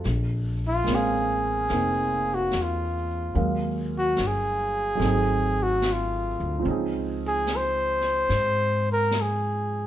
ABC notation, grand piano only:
X:1
M:4/4
L:1/16
Q:"Swing" 1/4=73
K:Bbm
V:1 name="Grand piano"
=A z3 [_A,B,CDf]4 [B,CE]8 | [G,A,B,Df]8 [G,=A,CE_A]8 | [F,CDEA]16 |]